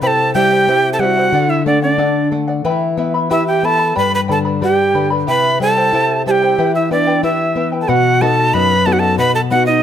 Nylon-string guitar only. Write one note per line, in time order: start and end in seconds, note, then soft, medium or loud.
0.02 1.30 C3 medium
0.35 0.67 G3 medium
0.68 0.99 C4 medium
0.99 1.32 G3 medium
1.32 2.60 D3 medium
1.66 1.98 A3 medium
1.98 2.30 D4 medium
2.32 2.64 A3 medium
2.65 3.92 E3 medium
2.98 3.30 B3 medium
3.31 3.63 G4 medium
3.63 3.95 B3 medium
3.97 5.24 G2 medium
4.29 4.61 D3 soft
4.62 4.94 G3 medium
4.95 5.26 D3 medium
5.28 6.54 C3 medium
5.60 5.92 G3 medium
5.93 6.24 E4 medium
6.26 6.58 G3 medium
6.58 7.84 E3 medium
6.91 7.22 B3 soft
7.23 7.55 E4 medium
7.56 7.87 B3 medium
7.89 8.52 B2 medium
8.21 8.73 B3 medium
8.21 8.73 D#4 medium
8.21 8.73 F#4 medium
8.54 9.17 F#2 medium
8.86 9.38 B3 medium
8.86 9.38 D#4 soft
8.86 9.38 F#4 medium
9.18 9.81 B2 medium
9.51 9.83 B3 medium
9.51 9.83 D#4 soft
9.51 9.83 F#4 medium